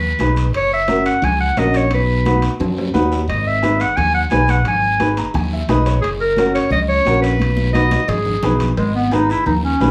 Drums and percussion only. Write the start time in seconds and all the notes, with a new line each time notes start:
0.19 high conga, high timbale, short guiro
0.36 high timbale, short guiro
0.53 high conga, high timbale, long guiro
0.88 high conga, high timbale, short guiro
1.06 high timbale, short guiro
1.22 high conga, low conga, high timbale, long guiro
1.57 high conga, high timbale, low timbale, short guiro
1.74 high timbale, short guiro
1.91 high conga, high timbale, long guiro
2.25 high conga, high timbale, short guiro
2.42 high timbale, short guiro
2.60 high conga, low conga, high timbale, long guiro
2.78 low timbale
2.95 high conga, low timbale, short guiro
3.12 low timbale, short guiro
3.29 high conga, high timbale, long guiro
3.63 high conga, high timbale, short guiro
3.80 high timbale, short guiro
3.97 high conga, low conga, high timbale, long guiro
4.30 high conga, high timbale, low timbale, short guiro
4.48 high timbale, short guiro
4.65 high conga, low conga, high timbale, long guiro
5.00 high conga, high timbale, short guiro
5.17 high timbale, short guiro
5.34 high conga, low conga, high timbale, long guiro
5.69 high conga, high timbale, low timbale, short guiro
5.86 high timbale, short guiro
6.03 high conga, high timbale, long guiro
6.37 high conga, high timbale, short guiro
6.55 high timbale, short guiro
6.71 high conga, low conga, high timbale, long guiro
7.05 high conga, high timbale, low timbale, short guiro
7.24 high timbale, short guiro
7.39 high conga, high timbale, long guiro
7.57 high conga
7.73 high conga, high timbale, short guiro
7.91 high conga, high timbale, short guiro
8.09 low conga, high timbale, long guiro
8.25 low conga
8.43 low conga, high timbale, short guiro
8.60 low conga, high timbale, short guiro
8.77 cowbell, high conga, long guiro
9.11 cowbell, high conga, short guiro
9.30 short guiro
9.46 cowbell, high conga, low conga, long guiro
9.80 cowbell, high conga, low timbale, short guiro